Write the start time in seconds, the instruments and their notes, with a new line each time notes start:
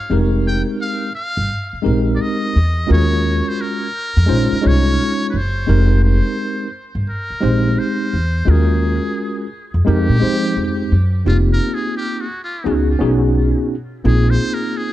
Already playing: muted trumpet F5
0.10 upright bass F1, tine electric piano G#3 C4 D#4 G4 A#4
0.47 muted trumpet G5
0.81 muted trumpet F5
1.15 muted trumpet F5
1.37 upright bass G1
1.73 muted upright bass stroke
1.82 tine electric piano G#3 C4 D#4 G4 A#4
1.86 upright bass A#1
2.16 muted trumpet D5
2.21 muted trumpet D#5
2.56 upright bass E2
2.87 upright bass D#2, tine electric piano G#3 C#4 F4 F#4 A#4
2.92 muted trumpet C#5
3.49 muted trumpet C5
3.61 muted trumpet A#4
4.17 upright bass F2
4.26 upright bass A#1, tine electric piano G#3 C#4 D#4 F4 C5
4.52 muted upright bass stroke
4.61 upright bass C2, tine electric piano G#3 C#4 D#4 F4 C#5
4.67 muted trumpet C#5
5.30 upright bass F#1, muted trumpet B4
5.37 muted trumpet C5
5.66 upright bass F1, tine electric piano G#3 C4 D#4 G4 A#4
6.04 muted trumpet C5
6.95 upright bass G1
7.09 muted trumpet A#4
7.30 muted upright bass stroke
7.41 upright bass A#1, tine electric piano G#3 C4 D#4 G4 C5
7.79 muted trumpet C5
8.13 upright bass E2
8.45 upright bass D#2, tine electric piano G#3 C#4 F4 F#4 A#4
8.50 muted trumpet G#4
9.74 upright bass F2
9.85 upright bass F2, tine electric piano G#3 C4 D#4 G4 A#4, muted trumpet G4
10.09 upright bass A#2
10.20 upright bass F3, tine electric piano G#3 C4 D#4 G4 C5
10.57 upright bass F2
10.92 upright bass F#2
11.25 upright bass F1, tine electric piano G3 C4 D#4 F4 G4, muted trumpet F4
11.31 tine electric piano A#3
11.53 muted trumpet A#4
11.74 muted trumpet G#4
11.97 muted trumpet G4
12.21 muted trumpet F#4
12.44 muted trumpet F4
12.64 upright bass C#2, tine electric piano B3 C#4 D#4 F#4 G#4
12.99 upright bass B1, tine electric piano B3 C#4 D#4 F#4 G#4
14.04 upright bass A#1, tine electric piano A#3 C4 D#4 F4 G#4, muted trumpet G#4
14.30 muted trumpet C5
14.54 muted trumpet A#4
14.77 muted trumpet G#4